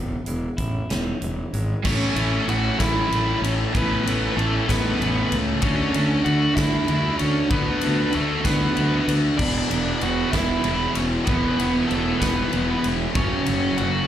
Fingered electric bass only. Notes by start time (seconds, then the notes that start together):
Already playing: E1
0.27 E1
0.59 A1
0.90 E1
1.22 E1
1.53 G#1
1.85 A1
2.16 A1
2.47 A1
2.80 A1
3.11 A1
3.42 A1
3.76 A1
4.06 A1
4.37 A1
4.69 A1
5.00 A1
5.32 C#2
5.63 D2
5.94 D2
6.26 D2
6.57 D2
6.89 D2
7.21 D2
7.51 D2
7.83 D2
8.15 D2
8.45 D2
8.78 D2
9.08 D2
9.40 E1
9.71 E1
10.03 E1
10.34 E1
10.65 E1
10.97 E1
11.28 E1
11.60 E1
11.92 E1
12.22 E1
12.54 E1
12.86 E1
13.16 F#1
13.48 F#1
13.80 F#1